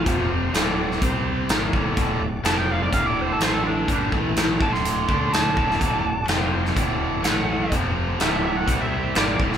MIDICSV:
0, 0, Header, 1, 6, 480
1, 0, Start_track
1, 0, Tempo, 478469
1, 59, Time_signature, 4, 2, 24, 8
1, 9608, End_track
2, 0, Start_track
2, 0, Title_t, "Lead electric guitar"
2, 0, Program_c, 0, 29
2, 0, Note_on_c, 0, 65, 80
2, 281, Note_off_c, 0, 65, 0
2, 2464, Note_on_c, 0, 81, 95
2, 2579, Note_off_c, 0, 81, 0
2, 2586, Note_on_c, 0, 79, 71
2, 2700, Note_off_c, 0, 79, 0
2, 2728, Note_on_c, 0, 77, 71
2, 2831, Note_off_c, 0, 77, 0
2, 2838, Note_on_c, 0, 74, 72
2, 2945, Note_off_c, 0, 74, 0
2, 2945, Note_on_c, 0, 77, 79
2, 3074, Note_off_c, 0, 77, 0
2, 3074, Note_on_c, 0, 74, 78
2, 3184, Note_off_c, 0, 74, 0
2, 3227, Note_on_c, 0, 72, 67
2, 3321, Note_off_c, 0, 72, 0
2, 3338, Note_on_c, 0, 69, 97
2, 3436, Note_off_c, 0, 69, 0
2, 3445, Note_on_c, 0, 72, 90
2, 3546, Note_off_c, 0, 72, 0
2, 3546, Note_on_c, 0, 69, 77
2, 3642, Note_on_c, 0, 62, 86
2, 3660, Note_off_c, 0, 69, 0
2, 4117, Note_off_c, 0, 62, 0
2, 4636, Note_on_c, 0, 81, 86
2, 4740, Note_on_c, 0, 84, 82
2, 4745, Note_off_c, 0, 81, 0
2, 5323, Note_off_c, 0, 84, 0
2, 5348, Note_on_c, 0, 81, 86
2, 6276, Note_off_c, 0, 81, 0
2, 7268, Note_on_c, 0, 78, 94
2, 7731, Note_off_c, 0, 78, 0
2, 8253, Note_on_c, 0, 76, 82
2, 8471, Note_off_c, 0, 76, 0
2, 8482, Note_on_c, 0, 76, 92
2, 8589, Note_off_c, 0, 76, 0
2, 8593, Note_on_c, 0, 78, 85
2, 8821, Note_off_c, 0, 78, 0
2, 8840, Note_on_c, 0, 76, 88
2, 9181, Note_off_c, 0, 76, 0
2, 9211, Note_on_c, 0, 74, 92
2, 9430, Note_off_c, 0, 74, 0
2, 9608, End_track
3, 0, Start_track
3, 0, Title_t, "Tonewheel organ"
3, 0, Program_c, 1, 16
3, 46, Note_on_c, 1, 72, 61
3, 50, Note_on_c, 1, 60, 61
3, 50, Note_on_c, 1, 65, 64
3, 526, Note_on_c, 1, 74, 69
3, 528, Note_off_c, 1, 72, 0
3, 529, Note_on_c, 1, 57, 68
3, 530, Note_off_c, 1, 60, 0
3, 530, Note_off_c, 1, 65, 0
3, 532, Note_on_c, 1, 66, 71
3, 537, Note_on_c, 1, 62, 75
3, 998, Note_on_c, 1, 72, 69
3, 1008, Note_off_c, 1, 74, 0
3, 1008, Note_on_c, 1, 60, 66
3, 1010, Note_off_c, 1, 57, 0
3, 1011, Note_off_c, 1, 66, 0
3, 1011, Note_on_c, 1, 67, 71
3, 1014, Note_off_c, 1, 62, 0
3, 1484, Note_off_c, 1, 72, 0
3, 1484, Note_on_c, 1, 57, 70
3, 1489, Note_off_c, 1, 60, 0
3, 1490, Note_on_c, 1, 74, 67
3, 1491, Note_off_c, 1, 67, 0
3, 1491, Note_on_c, 1, 62, 70
3, 1492, Note_on_c, 1, 66, 64
3, 2442, Note_off_c, 1, 57, 0
3, 2446, Note_off_c, 1, 62, 0
3, 2446, Note_off_c, 1, 74, 0
3, 2446, Note_on_c, 1, 60, 69
3, 2447, Note_off_c, 1, 66, 0
3, 2449, Note_on_c, 1, 72, 71
3, 2454, Note_on_c, 1, 65, 72
3, 2900, Note_on_c, 1, 69, 74
3, 2907, Note_on_c, 1, 57, 72
3, 2910, Note_on_c, 1, 54, 63
3, 2910, Note_on_c, 1, 62, 73
3, 2928, Note_off_c, 1, 60, 0
3, 2930, Note_off_c, 1, 72, 0
3, 2932, Note_off_c, 1, 65, 0
3, 3396, Note_off_c, 1, 69, 0
3, 3399, Note_off_c, 1, 57, 0
3, 3400, Note_off_c, 1, 54, 0
3, 3401, Note_off_c, 1, 62, 0
3, 3415, Note_on_c, 1, 57, 72
3, 3416, Note_on_c, 1, 69, 72
3, 3421, Note_on_c, 1, 64, 72
3, 3893, Note_off_c, 1, 57, 0
3, 3893, Note_off_c, 1, 69, 0
3, 3896, Note_off_c, 1, 64, 0
3, 4128, Note_on_c, 1, 69, 67
3, 4131, Note_on_c, 1, 57, 68
3, 4132, Note_on_c, 1, 64, 67
3, 4610, Note_off_c, 1, 69, 0
3, 4611, Note_off_c, 1, 57, 0
3, 4612, Note_off_c, 1, 64, 0
3, 4619, Note_on_c, 1, 74, 68
3, 4628, Note_on_c, 1, 57, 60
3, 4636, Note_on_c, 1, 62, 66
3, 4639, Note_on_c, 1, 66, 63
3, 6284, Note_off_c, 1, 74, 0
3, 6288, Note_off_c, 1, 57, 0
3, 6292, Note_off_c, 1, 62, 0
3, 6294, Note_off_c, 1, 66, 0
3, 6325, Note_on_c, 1, 65, 72
3, 6327, Note_on_c, 1, 60, 77
3, 6328, Note_on_c, 1, 72, 73
3, 6789, Note_off_c, 1, 65, 0
3, 6790, Note_off_c, 1, 60, 0
3, 6790, Note_off_c, 1, 72, 0
3, 6799, Note_on_c, 1, 62, 80
3, 6800, Note_on_c, 1, 74, 78
3, 6802, Note_on_c, 1, 66, 75
3, 6803, Note_on_c, 1, 57, 76
3, 7266, Note_off_c, 1, 62, 0
3, 7267, Note_off_c, 1, 66, 0
3, 7267, Note_off_c, 1, 74, 0
3, 7268, Note_off_c, 1, 57, 0
3, 7293, Note_on_c, 1, 64, 68
3, 7293, Note_on_c, 1, 69, 64
3, 7297, Note_on_c, 1, 57, 73
3, 7753, Note_off_c, 1, 64, 0
3, 7753, Note_off_c, 1, 69, 0
3, 7755, Note_off_c, 1, 57, 0
3, 7760, Note_on_c, 1, 72, 57
3, 7774, Note_on_c, 1, 65, 66
3, 7779, Note_on_c, 1, 60, 71
3, 8227, Note_off_c, 1, 72, 0
3, 8234, Note_off_c, 1, 65, 0
3, 8235, Note_on_c, 1, 66, 75
3, 8236, Note_off_c, 1, 60, 0
3, 8243, Note_on_c, 1, 62, 74
3, 8244, Note_on_c, 1, 74, 76
3, 8253, Note_on_c, 1, 57, 78
3, 8704, Note_off_c, 1, 66, 0
3, 8708, Note_off_c, 1, 62, 0
3, 8709, Note_off_c, 1, 74, 0
3, 8713, Note_off_c, 1, 57, 0
3, 8717, Note_on_c, 1, 72, 79
3, 8726, Note_on_c, 1, 60, 73
3, 8727, Note_on_c, 1, 67, 72
3, 9180, Note_on_c, 1, 66, 62
3, 9181, Note_on_c, 1, 62, 64
3, 9186, Note_off_c, 1, 72, 0
3, 9187, Note_on_c, 1, 57, 70
3, 9190, Note_off_c, 1, 60, 0
3, 9190, Note_off_c, 1, 67, 0
3, 9195, Note_on_c, 1, 74, 67
3, 9608, Note_off_c, 1, 57, 0
3, 9608, Note_off_c, 1, 62, 0
3, 9608, Note_off_c, 1, 66, 0
3, 9608, Note_off_c, 1, 74, 0
3, 9608, End_track
4, 0, Start_track
4, 0, Title_t, "Overdriven electric guitar"
4, 0, Program_c, 2, 29
4, 57, Note_on_c, 2, 41, 89
4, 58, Note_on_c, 2, 53, 94
4, 63, Note_on_c, 2, 48, 90
4, 522, Note_off_c, 2, 41, 0
4, 526, Note_on_c, 2, 38, 75
4, 532, Note_off_c, 2, 48, 0
4, 532, Note_off_c, 2, 53, 0
4, 536, Note_on_c, 2, 45, 95
4, 542, Note_on_c, 2, 50, 87
4, 1006, Note_off_c, 2, 38, 0
4, 1011, Note_off_c, 2, 45, 0
4, 1014, Note_off_c, 2, 50, 0
4, 1020, Note_on_c, 2, 48, 78
4, 1029, Note_on_c, 2, 55, 80
4, 1039, Note_on_c, 2, 60, 96
4, 1493, Note_off_c, 2, 48, 0
4, 1497, Note_off_c, 2, 55, 0
4, 1499, Note_on_c, 2, 44, 85
4, 1502, Note_off_c, 2, 60, 0
4, 1507, Note_on_c, 2, 51, 91
4, 1512, Note_on_c, 2, 56, 92
4, 1731, Note_off_c, 2, 44, 0
4, 1735, Note_on_c, 2, 38, 93
4, 1736, Note_off_c, 2, 51, 0
4, 1739, Note_off_c, 2, 56, 0
4, 1742, Note_on_c, 2, 45, 89
4, 1748, Note_on_c, 2, 50, 93
4, 1949, Note_off_c, 2, 38, 0
4, 1958, Note_off_c, 2, 45, 0
4, 1958, Note_off_c, 2, 50, 0
4, 1961, Note_on_c, 2, 38, 82
4, 1970, Note_on_c, 2, 45, 80
4, 1970, Note_on_c, 2, 50, 97
4, 2195, Note_off_c, 2, 45, 0
4, 2198, Note_off_c, 2, 38, 0
4, 2207, Note_on_c, 2, 45, 64
4, 2208, Note_off_c, 2, 50, 0
4, 2210, Note_on_c, 2, 38, 60
4, 2406, Note_off_c, 2, 45, 0
4, 2441, Note_off_c, 2, 38, 0
4, 2441, Note_on_c, 2, 41, 72
4, 2444, Note_on_c, 2, 48, 85
4, 2450, Note_on_c, 2, 53, 73
4, 2914, Note_off_c, 2, 41, 0
4, 2918, Note_off_c, 2, 48, 0
4, 2918, Note_on_c, 2, 38, 71
4, 2922, Note_on_c, 2, 45, 86
4, 2925, Note_off_c, 2, 53, 0
4, 2929, Note_on_c, 2, 50, 93
4, 3385, Note_off_c, 2, 45, 0
4, 3393, Note_off_c, 2, 38, 0
4, 3397, Note_on_c, 2, 45, 82
4, 3407, Note_off_c, 2, 50, 0
4, 3407, Note_on_c, 2, 52, 96
4, 3411, Note_on_c, 2, 57, 96
4, 3879, Note_off_c, 2, 52, 0
4, 3882, Note_off_c, 2, 45, 0
4, 3883, Note_on_c, 2, 50, 85
4, 3887, Note_on_c, 2, 43, 82
4, 3889, Note_off_c, 2, 57, 0
4, 3893, Note_on_c, 2, 55, 99
4, 4119, Note_off_c, 2, 43, 0
4, 4123, Note_on_c, 2, 45, 80
4, 4125, Note_off_c, 2, 50, 0
4, 4130, Note_off_c, 2, 55, 0
4, 4131, Note_on_c, 2, 52, 83
4, 4145, Note_on_c, 2, 57, 89
4, 4597, Note_off_c, 2, 45, 0
4, 4601, Note_on_c, 2, 38, 100
4, 4605, Note_off_c, 2, 52, 0
4, 4608, Note_off_c, 2, 57, 0
4, 4609, Note_on_c, 2, 45, 86
4, 4612, Note_on_c, 2, 50, 99
4, 5076, Note_off_c, 2, 50, 0
4, 5084, Note_off_c, 2, 38, 0
4, 5084, Note_off_c, 2, 45, 0
4, 5088, Note_on_c, 2, 50, 82
4, 5097, Note_on_c, 2, 57, 82
4, 5101, Note_on_c, 2, 62, 85
4, 5559, Note_on_c, 2, 38, 87
4, 5565, Note_off_c, 2, 50, 0
4, 5569, Note_on_c, 2, 45, 94
4, 5572, Note_off_c, 2, 57, 0
4, 5574, Note_off_c, 2, 62, 0
4, 5577, Note_on_c, 2, 50, 100
4, 5784, Note_off_c, 2, 38, 0
4, 5794, Note_off_c, 2, 45, 0
4, 5796, Note_on_c, 2, 38, 85
4, 5798, Note_off_c, 2, 50, 0
4, 5806, Note_on_c, 2, 45, 84
4, 5810, Note_on_c, 2, 50, 93
4, 6031, Note_off_c, 2, 38, 0
4, 6038, Note_off_c, 2, 45, 0
4, 6043, Note_on_c, 2, 38, 61
4, 6049, Note_off_c, 2, 50, 0
4, 6050, Note_on_c, 2, 45, 69
4, 6244, Note_off_c, 2, 38, 0
4, 6248, Note_off_c, 2, 45, 0
4, 6290, Note_on_c, 2, 41, 69
4, 6299, Note_on_c, 2, 48, 78
4, 6305, Note_on_c, 2, 53, 76
4, 6769, Note_off_c, 2, 41, 0
4, 6773, Note_off_c, 2, 48, 0
4, 6776, Note_off_c, 2, 53, 0
4, 6781, Note_on_c, 2, 38, 86
4, 6782, Note_on_c, 2, 45, 84
4, 6791, Note_on_c, 2, 50, 97
4, 7242, Note_off_c, 2, 45, 0
4, 7250, Note_off_c, 2, 38, 0
4, 7254, Note_on_c, 2, 45, 100
4, 7256, Note_on_c, 2, 52, 105
4, 7260, Note_off_c, 2, 50, 0
4, 7266, Note_on_c, 2, 57, 103
4, 7731, Note_off_c, 2, 45, 0
4, 7732, Note_off_c, 2, 52, 0
4, 7737, Note_off_c, 2, 57, 0
4, 7743, Note_on_c, 2, 41, 92
4, 7746, Note_on_c, 2, 48, 94
4, 7751, Note_on_c, 2, 53, 109
4, 8209, Note_off_c, 2, 41, 0
4, 8211, Note_off_c, 2, 48, 0
4, 8213, Note_on_c, 2, 38, 86
4, 8215, Note_off_c, 2, 53, 0
4, 8215, Note_on_c, 2, 45, 80
4, 8219, Note_on_c, 2, 50, 78
4, 8686, Note_off_c, 2, 38, 0
4, 8690, Note_on_c, 2, 48, 89
4, 8692, Note_off_c, 2, 45, 0
4, 8694, Note_off_c, 2, 50, 0
4, 8696, Note_on_c, 2, 55, 97
4, 8702, Note_on_c, 2, 60, 90
4, 9170, Note_off_c, 2, 48, 0
4, 9173, Note_off_c, 2, 55, 0
4, 9175, Note_off_c, 2, 60, 0
4, 9177, Note_on_c, 2, 44, 83
4, 9180, Note_on_c, 2, 56, 97
4, 9181, Note_on_c, 2, 51, 96
4, 9413, Note_off_c, 2, 44, 0
4, 9414, Note_off_c, 2, 56, 0
4, 9415, Note_off_c, 2, 51, 0
4, 9422, Note_on_c, 2, 38, 88
4, 9433, Note_on_c, 2, 45, 88
4, 9436, Note_on_c, 2, 50, 98
4, 9608, Note_off_c, 2, 38, 0
4, 9608, Note_off_c, 2, 45, 0
4, 9608, Note_off_c, 2, 50, 0
4, 9608, End_track
5, 0, Start_track
5, 0, Title_t, "Fingered electric bass"
5, 0, Program_c, 3, 33
5, 62, Note_on_c, 3, 29, 98
5, 508, Note_off_c, 3, 29, 0
5, 536, Note_on_c, 3, 26, 93
5, 984, Note_off_c, 3, 26, 0
5, 1020, Note_on_c, 3, 36, 85
5, 1466, Note_off_c, 3, 36, 0
5, 1502, Note_on_c, 3, 32, 81
5, 1724, Note_off_c, 3, 32, 0
5, 1737, Note_on_c, 3, 26, 89
5, 1962, Note_off_c, 3, 26, 0
5, 1982, Note_on_c, 3, 26, 87
5, 2205, Note_off_c, 3, 26, 0
5, 2209, Note_on_c, 3, 26, 76
5, 2438, Note_off_c, 3, 26, 0
5, 2446, Note_on_c, 3, 29, 90
5, 2899, Note_off_c, 3, 29, 0
5, 2939, Note_on_c, 3, 26, 89
5, 3386, Note_off_c, 3, 26, 0
5, 3400, Note_on_c, 3, 33, 72
5, 3856, Note_off_c, 3, 33, 0
5, 3898, Note_on_c, 3, 31, 84
5, 4122, Note_off_c, 3, 31, 0
5, 4140, Note_on_c, 3, 33, 83
5, 4587, Note_off_c, 3, 33, 0
5, 4620, Note_on_c, 3, 26, 78
5, 5067, Note_off_c, 3, 26, 0
5, 5108, Note_on_c, 3, 38, 81
5, 5552, Note_off_c, 3, 38, 0
5, 5588, Note_on_c, 3, 26, 91
5, 5809, Note_off_c, 3, 26, 0
5, 5831, Note_on_c, 3, 26, 98
5, 6050, Note_off_c, 3, 26, 0
5, 6076, Note_on_c, 3, 26, 78
5, 6293, Note_off_c, 3, 26, 0
5, 6306, Note_on_c, 3, 29, 101
5, 6751, Note_off_c, 3, 29, 0
5, 6785, Note_on_c, 3, 26, 91
5, 7230, Note_off_c, 3, 26, 0
5, 7256, Note_on_c, 3, 33, 80
5, 7706, Note_off_c, 3, 33, 0
5, 7743, Note_on_c, 3, 29, 104
5, 8189, Note_off_c, 3, 29, 0
5, 8229, Note_on_c, 3, 26, 93
5, 8673, Note_off_c, 3, 26, 0
5, 8705, Note_on_c, 3, 36, 90
5, 9151, Note_off_c, 3, 36, 0
5, 9190, Note_on_c, 3, 32, 84
5, 9410, Note_off_c, 3, 32, 0
5, 9425, Note_on_c, 3, 26, 89
5, 9608, Note_off_c, 3, 26, 0
5, 9608, End_track
6, 0, Start_track
6, 0, Title_t, "Drums"
6, 61, Note_on_c, 9, 42, 68
6, 63, Note_on_c, 9, 36, 99
6, 162, Note_off_c, 9, 42, 0
6, 163, Note_off_c, 9, 36, 0
6, 545, Note_on_c, 9, 42, 68
6, 557, Note_on_c, 9, 38, 104
6, 645, Note_off_c, 9, 42, 0
6, 657, Note_off_c, 9, 38, 0
6, 917, Note_on_c, 9, 38, 25
6, 1017, Note_off_c, 9, 38, 0
6, 1019, Note_on_c, 9, 42, 64
6, 1022, Note_on_c, 9, 36, 110
6, 1119, Note_off_c, 9, 42, 0
6, 1122, Note_off_c, 9, 36, 0
6, 1495, Note_on_c, 9, 42, 69
6, 1507, Note_on_c, 9, 38, 107
6, 1595, Note_off_c, 9, 42, 0
6, 1608, Note_off_c, 9, 38, 0
6, 1739, Note_on_c, 9, 36, 104
6, 1839, Note_off_c, 9, 36, 0
6, 1974, Note_on_c, 9, 42, 58
6, 1977, Note_on_c, 9, 36, 99
6, 2075, Note_off_c, 9, 42, 0
6, 2078, Note_off_c, 9, 36, 0
6, 2455, Note_on_c, 9, 42, 61
6, 2467, Note_on_c, 9, 38, 111
6, 2555, Note_off_c, 9, 42, 0
6, 2567, Note_off_c, 9, 38, 0
6, 2934, Note_on_c, 9, 42, 66
6, 2935, Note_on_c, 9, 36, 102
6, 3035, Note_off_c, 9, 36, 0
6, 3035, Note_off_c, 9, 42, 0
6, 3416, Note_on_c, 9, 42, 65
6, 3428, Note_on_c, 9, 38, 101
6, 3516, Note_off_c, 9, 42, 0
6, 3528, Note_off_c, 9, 38, 0
6, 3896, Note_on_c, 9, 36, 94
6, 3899, Note_on_c, 9, 42, 63
6, 3996, Note_off_c, 9, 36, 0
6, 3999, Note_off_c, 9, 42, 0
6, 4136, Note_on_c, 9, 36, 94
6, 4236, Note_off_c, 9, 36, 0
6, 4378, Note_on_c, 9, 42, 68
6, 4391, Note_on_c, 9, 38, 102
6, 4479, Note_off_c, 9, 42, 0
6, 4491, Note_off_c, 9, 38, 0
6, 4620, Note_on_c, 9, 36, 107
6, 4721, Note_off_c, 9, 36, 0
6, 4761, Note_on_c, 9, 38, 26
6, 4862, Note_off_c, 9, 38, 0
6, 4868, Note_on_c, 9, 42, 75
6, 4968, Note_off_c, 9, 42, 0
6, 5103, Note_on_c, 9, 36, 106
6, 5203, Note_off_c, 9, 36, 0
6, 5351, Note_on_c, 9, 42, 70
6, 5363, Note_on_c, 9, 38, 110
6, 5451, Note_off_c, 9, 42, 0
6, 5463, Note_off_c, 9, 38, 0
6, 5587, Note_on_c, 9, 36, 114
6, 5687, Note_off_c, 9, 36, 0
6, 5727, Note_on_c, 9, 38, 31
6, 5827, Note_off_c, 9, 38, 0
6, 5829, Note_on_c, 9, 36, 96
6, 5830, Note_on_c, 9, 42, 66
6, 5929, Note_off_c, 9, 36, 0
6, 5931, Note_off_c, 9, 42, 0
6, 6300, Note_on_c, 9, 42, 64
6, 6312, Note_on_c, 9, 38, 93
6, 6400, Note_off_c, 9, 42, 0
6, 6412, Note_off_c, 9, 38, 0
6, 6678, Note_on_c, 9, 38, 28
6, 6778, Note_off_c, 9, 38, 0
6, 6787, Note_on_c, 9, 36, 103
6, 6789, Note_on_c, 9, 42, 60
6, 6887, Note_off_c, 9, 36, 0
6, 6889, Note_off_c, 9, 42, 0
6, 7263, Note_on_c, 9, 42, 64
6, 7275, Note_on_c, 9, 38, 99
6, 7364, Note_off_c, 9, 42, 0
6, 7376, Note_off_c, 9, 38, 0
6, 7743, Note_on_c, 9, 42, 66
6, 7744, Note_on_c, 9, 36, 96
6, 7843, Note_off_c, 9, 42, 0
6, 7844, Note_off_c, 9, 36, 0
6, 8224, Note_on_c, 9, 42, 63
6, 8236, Note_on_c, 9, 38, 103
6, 8324, Note_off_c, 9, 42, 0
6, 8336, Note_off_c, 9, 38, 0
6, 8705, Note_on_c, 9, 36, 102
6, 8708, Note_on_c, 9, 42, 67
6, 8805, Note_off_c, 9, 36, 0
6, 8809, Note_off_c, 9, 42, 0
6, 9180, Note_on_c, 9, 42, 62
6, 9192, Note_on_c, 9, 38, 106
6, 9281, Note_off_c, 9, 42, 0
6, 9293, Note_off_c, 9, 38, 0
6, 9426, Note_on_c, 9, 36, 101
6, 9526, Note_off_c, 9, 36, 0
6, 9558, Note_on_c, 9, 38, 31
6, 9608, Note_off_c, 9, 38, 0
6, 9608, End_track
0, 0, End_of_file